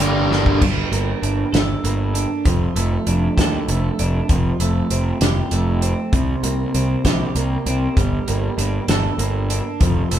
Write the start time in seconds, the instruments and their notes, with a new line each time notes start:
Already playing: clean electric guitar G2 A#3 D4
0.00 picked electric bass G1, distorted electric guitar G2 D3 G3 A#3 D4, clean electric guitar G4, closed hi-hat
0.31 picked electric bass G1, distorted electric guitar G2 D3 G3 A#3 D4, clean electric guitar D4, snare
0.46 kick
0.62 picked electric bass G1, clean electric guitar G2, kick, crash
0.92 picked electric bass G1, clean electric guitar A#3, closed hi-hat
1.22 picked electric bass G1, clean electric guitar D4, closed hi-hat
1.52 picked electric bass G1, clean electric guitar A4, snare, closed hi-hat
1.84 picked electric bass G1, clean electric guitar A#3, closed hi-hat
2.14 clean electric guitar D4, closed hi-hat
2.45 picked electric bass F1, clean electric guitar F3, kick, closed hi-hat
2.76 picked electric bass F1, clean electric guitar A3, closed hi-hat
3.07 picked electric bass F1, clean electric guitar D4, closed hi-hat
3.38 picked electric bass D#2, clean electric guitar A4, kick, snare, closed hi-hat
3.68 picked electric bass F1, clean electric guitar A3, closed hi-hat
3.99 picked electric bass F1, clean electric guitar D4, closed hi-hat
4.29 picked electric bass F1, clean electric guitar F3, kick, closed hi-hat
4.60 picked electric bass F1, clean electric guitar A3, closed hi-hat
4.90 picked electric bass F1, clean electric guitar C4, closed hi-hat
5.21 picked electric bass F1, clean electric guitar G4, snare, closed hi-hat
5.51 picked electric bass F1, clean electric guitar A3, closed hi-hat
5.82 clean electric guitar C4, closed hi-hat
6.13 picked electric bass C2, clean electric guitar C3, kick, closed hi-hat
6.43 picked electric bass C2, clean electric guitar A#3, closed hi-hat
6.74 picked electric bass C2, clean electric guitar C4, closed hi-hat
7.05 picked electric bass A#1, clean electric guitar G4, kick, snare, closed hi-hat
7.35 picked electric bass C2, clean electric guitar A#3, closed hi-hat
7.66 picked electric bass C2, clean electric guitar C4, closed hi-hat
7.97 picked electric bass G1, clean electric guitar G3, kick, closed hi-hat
8.28 picked electric bass G1, clean electric guitar A#3, closed hi-hat
8.58 picked electric bass G1, clean electric guitar D4, closed hi-hat
8.88 picked electric bass G1, clean electric guitar A4, snare, closed hi-hat
9.18 picked electric bass G1, clean electric guitar A#3, closed hi-hat
9.50 clean electric guitar D4, closed hi-hat
9.80 picked electric bass F1, clean electric guitar F3, kick, closed hi-hat
10.11 picked electric bass F1, clean electric guitar A3, closed hi-hat